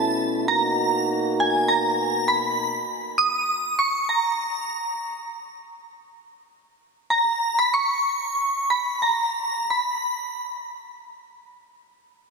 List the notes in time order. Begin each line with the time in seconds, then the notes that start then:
Already playing: B2 A3 C#4 E4 A5
0.46 A#3 D#4 F#4 A#5
1.40 G#5
1.68 A#5
2.28 B5
3.18 D#6
3.79 C#6
4.09 A#5
7.10 A#5
7.59 B5
7.74 C#6
8.70 B5
9.02 A#5
9.70 B5